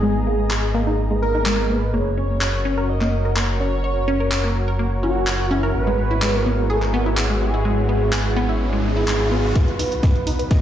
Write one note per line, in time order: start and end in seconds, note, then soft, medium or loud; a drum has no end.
0.00 1.91 G#1 medium
0.00 1.90 G#3 medium
0.00 0.11 G#3 medium
0.00 1.90 B3 medium
0.00 0.71 G#4 loud
0.00 1.90 G#4 medium
0.00 1.90 D#5 medium
0.00 1.90 A#5 medium
0.27 0.30 A#3 medium
0.50 0.56 G#4 medium
0.50 clap loud
0.74 0.78 A#3 loud
0.87 0.92 D#4 medium
1.11 1.14 G#3 medium
1.22 1.71 A#4 medium
1.35 1.42 D#4 medium
1.46 1.54 G#3 medium
1.46 clap loud
1.70 1.73 A#3 medium
1.70 1.95 B4 medium
1.94 5.72 F#1 medium
1.94 2.01 A#3 medium
1.94 9.52 F#4 medium
1.94 5.71 A#4 medium
1.94 2.91 C#5 loud
1.94 9.52 C#5 medium
2.18 2.21 C#4 medium
2.41 2.46 C#5 medium
2.41 clap loud
2.65 2.68 C#4 loud
2.78 2.82 A#4 medium
2.89 3.37 D#5 loud
3.01 3.04 A#3 medium
3.01 clap soft
3.25 3.32 A#4 medium
3.36 3.44 A#3 medium
3.36 clap loud
3.60 3.63 C#4 medium
3.60 4.52 C#5 loud
3.84 3.89 C#5 medium
4.08 4.11 C#4 loud
4.20 4.25 A#4 medium
4.31 clap loud
4.44 4.47 A#3 medium
4.68 4.75 A#4 medium
4.79 4.87 A#3 medium
5.03 5.06 C#4 medium
5.03 5.53 F#4 medium
5.27 5.32 C#5 medium
5.27 clap loud
5.51 5.54 C#4 medium
5.51 5.71 E4 medium
5.63 5.68 A#4 medium
5.74 9.53 G#1 medium
5.74 9.52 G#3 medium
5.74 9.52 B3 medium
5.74 9.52 E4 medium
5.74 6.36 B4 loud
5.74 riser medium
5.87 5.90 G#3 medium
6.11 6.18 E4 medium
6.22 6.30 G#3 medium
6.22 clap loud
6.36 6.66 A#4 loud
6.46 6.49 B3 medium
6.70 6.75 G#4 medium
6.70 7.14 A#4 medium
6.82 clap soft
6.94 6.97 B3 loud
7.06 7.11 E4 medium
7.17 clap loud
7.30 7.33 G#3 medium
7.41 8.33 G#4 loud
7.54 7.61 E4 medium
7.65 7.73 G#3 medium
7.89 7.92 B3 medium
8.12 8.18 G#4 medium
8.12 clap loud
8.36 8.40 B3 loud
8.49 8.54 E4 medium
8.73 8.76 G#3 medium
8.84 9.57 G#4 loud
8.97 9.04 E4 medium
9.08 9.16 G#3 medium
9.08 clap loud
9.32 9.35 B3 medium
9.55 10.62 B1 medium
9.55 9.63 B3 medium
9.55 10.62 D#4 medium
9.55 10.62 F#4 medium
9.55 10.62 B4 medium
9.55 10.50 B4 loud
9.55 kick loud
9.55 snare soft
9.55 closed hi-hat medium
9.55 riser medium
9.68 closed hi-hat soft
9.79 9.82 D#4 medium
9.79 open hi-hat loud
9.92 closed hi-hat medium
10.03 10.08 D#5 medium
10.03 kick loud
10.03 snare soft
10.03 closed hi-hat medium
10.16 closed hi-hat soft
10.27 10.30 D#4 loud
10.27 open hi-hat medium
10.39 10.44 B4 medium
10.39 closed hi-hat medium
10.51 10.62 D#5 loud
10.51 kick loud
10.51 snare soft
10.51 closed hi-hat medium